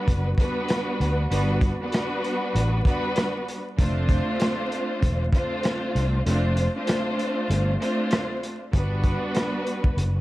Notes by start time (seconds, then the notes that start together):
Already playing: G3 B3 D4 F#4 B4
0.08 F#1, kick, closed hi-hat
0.38 G3 B3 D4 F#4 B4, kick, closed hi-hat
0.68 cross-stick, snare, closed hi-hat
1.00 D2, closed hi-hat
1.29 G1 G3 B3 D4 F#4 B4, closed hi-hat
1.61 kick, closed hi-hat
1.81 G3 B3 D4 F#4 B4
1.92 cross-stick, snare, closed hi-hat
2.24 closed hi-hat
2.55 A1, closed hi-hat
2.85 G3 B3 D4 F#4 B4, kick, closed hi-hat
3.16 cross-stick, snare, closed hi-hat
3.48 closed hi-hat
3.78 F1 A3 C4 D4 F4 C5, kick, closed hi-hat
4.09 kick, closed hi-hat
4.40 cross-stick, snare, closed hi-hat
4.72 closed hi-hat
5.03 E1, kick, closed hi-hat
5.33 A3 C4 D4 F4 C5, kick, closed hi-hat
5.63 cross-stick, snare, closed hi-hat
5.95 C2, closed hi-hat
6.26 F1 A3 C4 D4 F4 C5, closed hi-hat
6.57 closed hi-hat
6.75 A3 C4 D4 F4 C5
6.87 cross-stick, snare, closed hi-hat
7.19 closed hi-hat
7.50 G1, closed hi-hat
7.79 A3 C4 D4 F4 C5, closed hi-hat
8.11 cross-stick, snare, closed hi-hat
8.43 closed hi-hat
8.73 G1 G3 B3 D4 F#4 B4, kick, closed hi-hat
9.04 kick, closed hi-hat
9.35 cross-stick, snare, closed hi-hat
9.67 closed hi-hat
9.84 kick
9.97 F#1, closed hi-hat